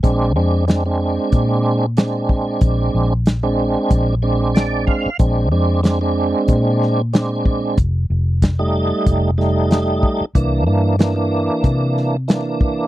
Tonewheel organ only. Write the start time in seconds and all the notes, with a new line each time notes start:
0.03 G#3 C4 D4
0.36 G#3 C4 D4
0.68 G#3 C4 D4
0.86 G#3 C4 D4
1.97 G#3 C4 D4
3.43 G#3 C4 D4
4.22 G#3 C4 D4
4.55 D5
4.87 F5
5.19 G#3 C4 D4
5.51 G#3 C4 D4
5.83 G#3 C4 D4
6.01 G#3 C4 D4
7.13 G#3 C4 D4
8.59 G3 A3 D#4
9.38 G3 A3 D#4
10.35 E3 A#3 D4
10.66 E3 A#3 D4
10.99 E3 A#3 D4
11.16 E3 A#3 D4
12.28 E3 A#3 D4